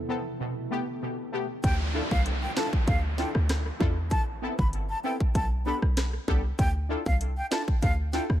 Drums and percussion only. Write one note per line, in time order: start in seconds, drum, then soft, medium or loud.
1.64 kick loud
1.64 closed hi-hat medium
2.11 kick medium
2.26 closed hi-hat medium
2.57 cross-stick medium
2.57 snare loud
2.73 kick medium
2.88 kick loud
2.88 closed hi-hat medium
3.18 snare medium
3.35 cross-stick medium
3.49 cross-stick loud
3.49 snare loud
3.49 closed hi-hat medium
3.80 kick loud
4.11 kick loud
4.11 closed hi-hat medium
4.59 kick medium
4.73 closed hi-hat medium
5.20 kick medium
5.35 kick medium
5.35 closed hi-hat medium
5.82 cross-stick medium
5.97 cross-stick loud
5.97 snare loud
5.97 closed hi-hat medium
6.28 kick loud
6.59 kick loud
6.59 closed hi-hat medium
7.06 kick medium
7.21 closed hi-hat medium
7.52 cross-stick loud
7.52 snare loud
7.68 kick loud
7.82 kick loud
7.82 closed hi-hat medium
8.13 snare medium
8.30 cross-stick medium